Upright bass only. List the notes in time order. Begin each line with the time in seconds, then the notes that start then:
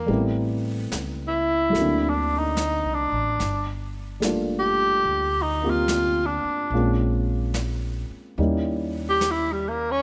0.08 A1
0.92 C#2
1.74 D2
2.84 C2
3.12 A1
3.39 G1
5.05 D2
6.44 muted upright bass stroke
6.70 A#1
8.10 muted upright bass stroke
8.38 D#2